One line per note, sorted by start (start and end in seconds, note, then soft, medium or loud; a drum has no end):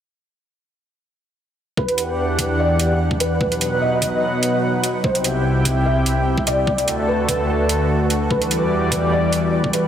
1.77 3.39 E2 medium
1.77 3.39 E3 medium
1.77 3.39 D4 medium
1.77 3.39 G4 medium
1.77 2.52 B4 medium
1.77 3.39 F#5 medium
1.77 kick loud
1.89 closed hi-hat soft
1.98 closed hi-hat medium
2.39 kick medium
2.39 closed hi-hat medium
2.59 3.13 D5 medium
2.80 closed hi-hat medium
3.11 kick medium
3.20 3.74 B4 medium
3.20 closed hi-hat medium
3.41 5.02 B2 medium
3.41 5.02 F#3 medium
3.41 5.02 D#4 medium
3.41 5.02 B4 medium
3.41 5.02 F#5 medium
3.41 kick loud
3.52 closed hi-hat soft
3.61 closed hi-hat medium
3.81 4.96 D#5 medium
4.02 kick medium
4.02 closed hi-hat medium
4.43 closed hi-hat medium
4.84 closed hi-hat medium
5.04 6.66 C2 medium
5.04 6.66 C3 medium
5.04 6.66 E4 medium
5.04 6.66 G4 medium
5.04 5.78 C5 medium
5.04 6.66 G5 medium
5.04 kick loud
5.15 closed hi-hat soft
5.24 closed hi-hat medium
5.65 kick medium
5.65 closed hi-hat medium
5.86 6.39 E5 medium
6.06 closed hi-hat medium
6.38 kick medium
6.47 7.01 D5 medium
6.47 closed hi-hat medium
6.67 8.29 D2 medium
6.67 8.29 D3 medium
6.67 8.29 A3 medium
6.67 9.88 F#4 medium
6.67 8.29 A4 medium
6.67 kick loud
6.78 closed hi-hat soft
6.88 closed hi-hat medium
7.08 8.23 B4 medium
7.29 kick medium
7.29 closed hi-hat medium
7.69 closed hi-hat medium
8.10 closed hi-hat medium
8.31 9.88 E2 medium
8.31 9.88 E3 medium
8.31 9.88 G3 medium
8.31 9.05 B4 medium
8.31 9.88 D5 medium
8.31 kick loud
8.42 closed hi-hat soft
8.51 closed hi-hat medium
8.92 kick medium
8.92 closed hi-hat medium
9.12 9.66 D5 medium
9.33 closed hi-hat medium
9.64 kick medium
9.73 9.88 B4 medium
9.73 closed hi-hat medium